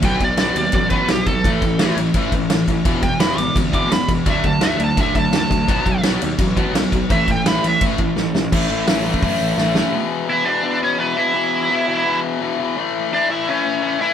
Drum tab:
CC |x-x-x-x-x-x-x-x-|x-x-x-x-x-x-x-x-|x-x-x-x-x-x-x-x-|x-x-x-x-x-x-x-x-|
HH |----------------|----------------|----------------|----------------|
SD |----o-------o---|----o-------o---|----o-------o---|----o-------o---|
BD |o-o-----o-o---o-|o-o-----o-o---o-|o-o-----o-o---o-|o-o-----o-o---o-|

CC |x-x-x-x-x-x-x-x-|x-x-x-x-x-x-----|x---------------|----------------|
HH |----------------|----------------|----o---o-------|----------------|
SD |----o-------o---|----o-------o-o-|----o-------o-o-|----------------|
BD |o-o-----o-o---o-|o-o-----o-o-----|o------oo-------|----------------|

CC |----------------|----------------|
HH |----------------|----------------|
SD |----------------|----------------|
BD |----------------|----------------|